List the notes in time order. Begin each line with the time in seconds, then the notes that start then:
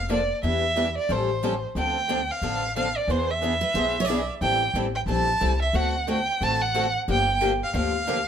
Already playing: F1
0.09 D3 F3 A#3 D4 A4 D5
0.43 E2 E3 G3 B3 D4 E4 G4 B4 E5
0.76 E3 G3 B3 D4 E4 G4 B4
0.98 D5
1.09 A1 F3 G3 C#4 G4 A4 C5
1.43 F3 G3 C#4 G4 A4
1.75 D2 D3 F3 C4 D4 A4 G5
2.08 D3 F3 C4 D4 A4
2.31 F5
2.42 A1 D3 F3 C4 D4 A4
2.76 D3 F3 C4 D4 A4 F5
2.97 D5
3.08 E2 E3 B3 D4 G#4 B4 C5
3.30 E5
3.41 E3 B3 D4 G#4 B4
3.61 B4
3.74 B1 E3 B3 D4 G#4 B4 C5
4.00 C#5
4.05 D5
4.09 E3 B3 D4 G#4 B4
4.41 A1 E3 G3 C4 E4 A4 G5
4.74 A1 E3 G3 C4 E4 A4
4.95 G5
5.06 A#1 E3 G3 C4 E4 A4 A5
5.41 C2 E3 G3 C4 E4 A4
5.62 E5
5.73 D2 D3 A3 C4 F#4 A4 F#5
6.07 D3 A3 C4 F#4 A4 G5
6.41 A1 D3 A3 C4 F#4 A4 A5
6.62 F#5
6.75 D3 A3 C4 F#4 A4
7.08 G1 D3 F3 A#3 D4 G4 G5
7.41 D3 F3 A#3 D4 G4
7.63 F5
7.74 D2 D3 F3 A#3 D4 G4 F5
8.07 D3 F3 A#3 D4 G4